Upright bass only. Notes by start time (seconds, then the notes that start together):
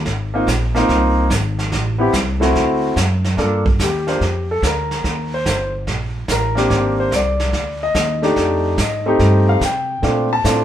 0.05 G#1
0.47 A#1
0.89 C2
1.30 G#1
1.72 A1
2.13 C2
2.55 D2
2.96 F#2
3.37 G2
3.79 D#2
4.20 F2
4.62 D2
5.04 D#2
5.45 G1
5.87 A#1
6.28 A1
6.70 G#1
7.11 C2
7.53 D2
7.94 D#2
8.36 F2
8.77 G#2
9.19 G2
9.61 C3
10.03 A#2
10.44 A2